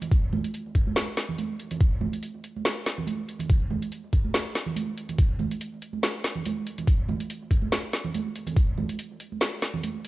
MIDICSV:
0, 0, Header, 1, 2, 480
1, 0, Start_track
1, 0, Tempo, 422535
1, 132, Time_signature, 4, 2, 24, 8
1, 11450, End_track
2, 0, Start_track
2, 0, Title_t, "Drums"
2, 18, Note_on_c, 9, 64, 70
2, 23, Note_on_c, 9, 42, 52
2, 130, Note_on_c, 9, 36, 119
2, 132, Note_off_c, 9, 64, 0
2, 133, Note_off_c, 9, 42, 0
2, 133, Note_on_c, 9, 42, 73
2, 244, Note_off_c, 9, 36, 0
2, 246, Note_off_c, 9, 42, 0
2, 371, Note_on_c, 9, 64, 90
2, 373, Note_on_c, 9, 63, 100
2, 485, Note_off_c, 9, 64, 0
2, 487, Note_off_c, 9, 63, 0
2, 503, Note_on_c, 9, 42, 50
2, 612, Note_off_c, 9, 42, 0
2, 612, Note_on_c, 9, 42, 71
2, 726, Note_off_c, 9, 42, 0
2, 851, Note_on_c, 9, 36, 60
2, 852, Note_on_c, 9, 42, 50
2, 964, Note_off_c, 9, 36, 0
2, 966, Note_off_c, 9, 42, 0
2, 987, Note_on_c, 9, 63, 71
2, 1091, Note_on_c, 9, 38, 116
2, 1091, Note_on_c, 9, 42, 73
2, 1101, Note_off_c, 9, 63, 0
2, 1205, Note_off_c, 9, 38, 0
2, 1205, Note_off_c, 9, 42, 0
2, 1331, Note_on_c, 9, 38, 63
2, 1445, Note_off_c, 9, 38, 0
2, 1464, Note_on_c, 9, 64, 77
2, 1571, Note_on_c, 9, 42, 74
2, 1574, Note_on_c, 9, 63, 88
2, 1577, Note_off_c, 9, 64, 0
2, 1685, Note_off_c, 9, 42, 0
2, 1688, Note_off_c, 9, 63, 0
2, 1811, Note_on_c, 9, 42, 49
2, 1925, Note_off_c, 9, 42, 0
2, 1941, Note_on_c, 9, 42, 50
2, 1946, Note_on_c, 9, 64, 79
2, 2050, Note_off_c, 9, 42, 0
2, 2050, Note_on_c, 9, 42, 73
2, 2051, Note_on_c, 9, 36, 121
2, 2060, Note_off_c, 9, 64, 0
2, 2164, Note_off_c, 9, 42, 0
2, 2165, Note_off_c, 9, 36, 0
2, 2282, Note_on_c, 9, 63, 90
2, 2284, Note_on_c, 9, 64, 73
2, 2396, Note_off_c, 9, 63, 0
2, 2398, Note_off_c, 9, 64, 0
2, 2422, Note_on_c, 9, 42, 49
2, 2530, Note_off_c, 9, 42, 0
2, 2530, Note_on_c, 9, 42, 69
2, 2644, Note_off_c, 9, 42, 0
2, 2772, Note_on_c, 9, 42, 48
2, 2885, Note_off_c, 9, 42, 0
2, 2913, Note_on_c, 9, 63, 67
2, 3012, Note_on_c, 9, 38, 115
2, 3012, Note_on_c, 9, 42, 71
2, 3027, Note_off_c, 9, 63, 0
2, 3126, Note_off_c, 9, 38, 0
2, 3126, Note_off_c, 9, 42, 0
2, 3253, Note_on_c, 9, 38, 62
2, 3366, Note_off_c, 9, 38, 0
2, 3385, Note_on_c, 9, 64, 77
2, 3485, Note_on_c, 9, 63, 93
2, 3491, Note_on_c, 9, 42, 70
2, 3499, Note_off_c, 9, 64, 0
2, 3598, Note_off_c, 9, 63, 0
2, 3605, Note_off_c, 9, 42, 0
2, 3732, Note_on_c, 9, 42, 49
2, 3845, Note_off_c, 9, 42, 0
2, 3855, Note_on_c, 9, 64, 75
2, 3863, Note_on_c, 9, 42, 50
2, 3968, Note_off_c, 9, 64, 0
2, 3971, Note_on_c, 9, 36, 115
2, 3972, Note_off_c, 9, 42, 0
2, 3972, Note_on_c, 9, 42, 75
2, 4085, Note_off_c, 9, 36, 0
2, 4085, Note_off_c, 9, 42, 0
2, 4208, Note_on_c, 9, 64, 72
2, 4213, Note_on_c, 9, 63, 87
2, 4321, Note_off_c, 9, 64, 0
2, 4327, Note_off_c, 9, 63, 0
2, 4343, Note_on_c, 9, 42, 49
2, 4452, Note_off_c, 9, 42, 0
2, 4452, Note_on_c, 9, 42, 71
2, 4565, Note_off_c, 9, 42, 0
2, 4690, Note_on_c, 9, 36, 57
2, 4691, Note_on_c, 9, 42, 49
2, 4804, Note_off_c, 9, 36, 0
2, 4804, Note_off_c, 9, 42, 0
2, 4823, Note_on_c, 9, 63, 63
2, 4933, Note_on_c, 9, 38, 117
2, 4933, Note_on_c, 9, 42, 73
2, 4937, Note_off_c, 9, 63, 0
2, 5046, Note_off_c, 9, 38, 0
2, 5046, Note_off_c, 9, 42, 0
2, 5173, Note_on_c, 9, 38, 59
2, 5287, Note_off_c, 9, 38, 0
2, 5297, Note_on_c, 9, 64, 77
2, 5409, Note_on_c, 9, 63, 87
2, 5410, Note_off_c, 9, 64, 0
2, 5413, Note_on_c, 9, 42, 73
2, 5522, Note_off_c, 9, 63, 0
2, 5527, Note_off_c, 9, 42, 0
2, 5652, Note_on_c, 9, 42, 50
2, 5766, Note_off_c, 9, 42, 0
2, 5782, Note_on_c, 9, 64, 66
2, 5783, Note_on_c, 9, 42, 50
2, 5890, Note_on_c, 9, 36, 110
2, 5891, Note_off_c, 9, 42, 0
2, 5891, Note_on_c, 9, 42, 77
2, 5896, Note_off_c, 9, 64, 0
2, 6004, Note_off_c, 9, 36, 0
2, 6005, Note_off_c, 9, 42, 0
2, 6124, Note_on_c, 9, 64, 78
2, 6131, Note_on_c, 9, 63, 91
2, 6238, Note_off_c, 9, 64, 0
2, 6245, Note_off_c, 9, 63, 0
2, 6264, Note_on_c, 9, 42, 49
2, 6373, Note_off_c, 9, 42, 0
2, 6373, Note_on_c, 9, 42, 73
2, 6487, Note_off_c, 9, 42, 0
2, 6613, Note_on_c, 9, 42, 52
2, 6727, Note_off_c, 9, 42, 0
2, 6738, Note_on_c, 9, 63, 65
2, 6851, Note_off_c, 9, 63, 0
2, 6853, Note_on_c, 9, 38, 109
2, 6853, Note_on_c, 9, 42, 76
2, 6967, Note_off_c, 9, 38, 0
2, 6967, Note_off_c, 9, 42, 0
2, 7094, Note_on_c, 9, 38, 60
2, 7207, Note_off_c, 9, 38, 0
2, 7219, Note_on_c, 9, 64, 69
2, 7333, Note_off_c, 9, 64, 0
2, 7334, Note_on_c, 9, 42, 74
2, 7342, Note_on_c, 9, 63, 91
2, 7448, Note_off_c, 9, 42, 0
2, 7456, Note_off_c, 9, 63, 0
2, 7574, Note_on_c, 9, 42, 51
2, 7688, Note_off_c, 9, 42, 0
2, 7705, Note_on_c, 9, 42, 53
2, 7707, Note_on_c, 9, 64, 65
2, 7810, Note_on_c, 9, 36, 112
2, 7814, Note_off_c, 9, 42, 0
2, 7814, Note_on_c, 9, 42, 80
2, 7821, Note_off_c, 9, 64, 0
2, 7924, Note_off_c, 9, 36, 0
2, 7927, Note_off_c, 9, 42, 0
2, 8052, Note_on_c, 9, 63, 82
2, 8055, Note_on_c, 9, 64, 78
2, 8165, Note_off_c, 9, 63, 0
2, 8169, Note_off_c, 9, 64, 0
2, 8184, Note_on_c, 9, 42, 52
2, 8294, Note_off_c, 9, 42, 0
2, 8294, Note_on_c, 9, 42, 76
2, 8407, Note_off_c, 9, 42, 0
2, 8530, Note_on_c, 9, 36, 56
2, 8534, Note_on_c, 9, 42, 53
2, 8643, Note_off_c, 9, 36, 0
2, 8647, Note_off_c, 9, 42, 0
2, 8657, Note_on_c, 9, 63, 61
2, 8771, Note_off_c, 9, 63, 0
2, 8773, Note_on_c, 9, 38, 108
2, 8773, Note_on_c, 9, 42, 79
2, 8886, Note_off_c, 9, 38, 0
2, 8886, Note_off_c, 9, 42, 0
2, 9013, Note_on_c, 9, 38, 57
2, 9127, Note_off_c, 9, 38, 0
2, 9139, Note_on_c, 9, 64, 76
2, 9252, Note_off_c, 9, 64, 0
2, 9253, Note_on_c, 9, 42, 79
2, 9257, Note_on_c, 9, 63, 86
2, 9366, Note_off_c, 9, 42, 0
2, 9371, Note_off_c, 9, 63, 0
2, 9493, Note_on_c, 9, 42, 54
2, 9606, Note_off_c, 9, 42, 0
2, 9619, Note_on_c, 9, 64, 79
2, 9622, Note_on_c, 9, 42, 55
2, 9730, Note_on_c, 9, 36, 114
2, 9731, Note_off_c, 9, 42, 0
2, 9731, Note_on_c, 9, 42, 84
2, 9732, Note_off_c, 9, 64, 0
2, 9843, Note_off_c, 9, 36, 0
2, 9845, Note_off_c, 9, 42, 0
2, 9967, Note_on_c, 9, 64, 79
2, 9976, Note_on_c, 9, 63, 83
2, 10081, Note_off_c, 9, 64, 0
2, 10089, Note_off_c, 9, 63, 0
2, 10101, Note_on_c, 9, 42, 55
2, 10211, Note_off_c, 9, 42, 0
2, 10211, Note_on_c, 9, 42, 81
2, 10324, Note_off_c, 9, 42, 0
2, 10451, Note_on_c, 9, 42, 56
2, 10564, Note_off_c, 9, 42, 0
2, 10588, Note_on_c, 9, 63, 57
2, 10690, Note_on_c, 9, 38, 111
2, 10690, Note_on_c, 9, 42, 81
2, 10701, Note_off_c, 9, 63, 0
2, 10804, Note_off_c, 9, 38, 0
2, 10804, Note_off_c, 9, 42, 0
2, 10931, Note_on_c, 9, 38, 58
2, 11044, Note_off_c, 9, 38, 0
2, 11061, Note_on_c, 9, 64, 75
2, 11171, Note_on_c, 9, 42, 80
2, 11171, Note_on_c, 9, 63, 79
2, 11175, Note_off_c, 9, 64, 0
2, 11284, Note_off_c, 9, 63, 0
2, 11285, Note_off_c, 9, 42, 0
2, 11411, Note_on_c, 9, 42, 55
2, 11450, Note_off_c, 9, 42, 0
2, 11450, End_track
0, 0, End_of_file